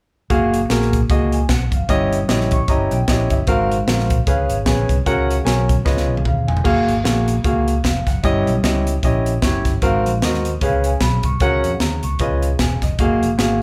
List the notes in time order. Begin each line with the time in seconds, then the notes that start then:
0.30 F#1 A#3 F#4 G#4 F5, kick, closed hi-hat
0.54 closed hi-hat
0.69 A#1 A#3 F#4 G#4 A#4, snare, closed hi-hat
0.82 snare
0.93 kick, closed hi-hat
1.10 C#2 A#3 F#4 G#4 D#5, kick, closed hi-hat
1.32 G#5, closed hi-hat
1.49 B1 F#5, kick, snare, closed hi-hat
1.72 F#1 F5, kick, closed hi-hat
1.89 G1 G2 C#4 E4 G4 D#5, kick, closed hi-hat
2.13 closed hi-hat
2.28 A#1 C#4 E4 G4 D#5, snare, closed hi-hat
2.40 snare
2.51 C#6, kick, closed hi-hat
2.68 G1 C#4 E4 G4 D#5 A#5, kick, closed hi-hat
2.91 B1 G5, closed hi-hat
3.08 A#1 C#4 E4 G4 D#5, kick, snare, closed hi-hat
3.30 G1 E5, kick, closed hi-hat
3.47 G#1 G#2 C4 F#4 A#4 F5, kick, closed hi-hat
3.72 closed hi-hat
3.87 A#1 C4 F#4 A#4 F5, snare, closed hi-hat
3.99 snare
4.10 kick, closed hi-hat
4.27 C#2 C#3 C#4 G#4 B4 F5, kick, closed hi-hat
4.50 G#1, closed hi-hat
4.66 A#1 C#4 G#4 B4 G#5, kick, snare, closed hi-hat
4.89 C2, kick, closed hi-hat
5.06 C#2 C#3 C#4 F#4 A#4 F#5, kick, closed hi-hat
5.30 closed hi-hat
5.44 B1 C#4 F#4 A#4 G#5, snare, closed hi-hat
5.69 kick, closed hi-hat
5.85 C#2 C#3 C#4 F4 B4 D#5, kick, snare
5.97 snare
6.08 B1
6.17 high tom
6.25 D#2 F5, kick, mid tom
6.48 F1 G#5, floor tom
6.57 floor tom
6.64 F#1 A#3 F#4 G#4 F5, kick, crash
6.87 G#1, closed hi-hat
7.04 A#1 A#3 F#4 G#4 F5, snare, closed hi-hat
7.28 closed hi-hat
7.44 C#2 A#3 F#4 G#4 F5, kick, closed hi-hat
7.68 closed hi-hat
7.84 F1 F5, kick, snare, closed hi-hat
8.07 F#1 F#5, kick, snare, closed hi-hat
8.23 G1 G2 C#4 E4 G4 D#5, kick, closed hi-hat
8.47 B1, closed hi-hat
8.63 C#2 C#4 E4 G4 D#5, snare, closed hi-hat
8.87 closed hi-hat
9.03 A#1 C#4 E4 G4 D#5, kick, closed hi-hat
9.26 closed hi-hat
9.42 F#1 C#4 E4 G4 C#5, kick, snare, closed hi-hat
9.65 G1, kick, snare, closed hi-hat
9.82 G#1 G#2 C4 F#4 A#4 F5, kick, closed hi-hat
10.05 A#1, closed hi-hat
10.22 D#2 C4 F#4 A#4 D#5, snare, closed hi-hat
10.34 snare
10.45 closed hi-hat
10.61 C#2 C#3 C#4 G#4 B4 F5, kick, closed hi-hat
10.84 G#5, closed hi-hat
11.01 B1 B5, kick, snare, closed hi-hat
11.23 C2 C#6, kick, closed hi-hat
11.40 C#2 C#3 C#4 F#4 A#4 F#5, kick, closed hi-hat
11.64 F2, closed hi-hat
11.80 D#2 A#5, snare, closed hi-hat
12.03 C#2 C#6, closed hi-hat
12.19 C#2 C#3 C#4 F4 B4 D#5, kick, closed hi-hat
12.42 closed hi-hat
12.59 E1 G#5, kick, snare, closed hi-hat
12.82 F1 D#5, kick, snare, closed hi-hat
12.99 F#1 A#3 F#4 G#4 F5, kick, closed hi-hat
13.21 F1, closed hi-hat
13.38 G#1 A#3 F#4 G#4 F5, snare, closed hi-hat